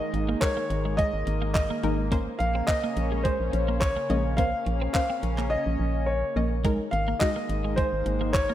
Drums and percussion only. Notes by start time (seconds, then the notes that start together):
0.14 closed hi-hat
0.42 kick, clap, closed hi-hat
0.70 closed hi-hat
0.99 kick, closed hi-hat
1.27 closed hi-hat
1.55 kick, clap, closed hi-hat
1.83 closed hi-hat
2.12 kick, closed hi-hat
2.40 closed hi-hat
2.68 kick, clap, closed hi-hat
2.97 closed hi-hat
3.25 kick, closed hi-hat
3.53 closed hi-hat
3.81 kick, clap, closed hi-hat
4.10 closed hi-hat
4.38 kick, closed hi-hat
4.66 closed hi-hat
4.95 kick, clap, closed hi-hat
5.23 closed hi-hat
5.38 clap
6.65 kick, closed hi-hat
6.93 closed hi-hat
7.21 kick, clap, closed hi-hat
7.49 closed hi-hat
7.78 kick, closed hi-hat
8.06 closed hi-hat
8.34 kick, clap, closed hi-hat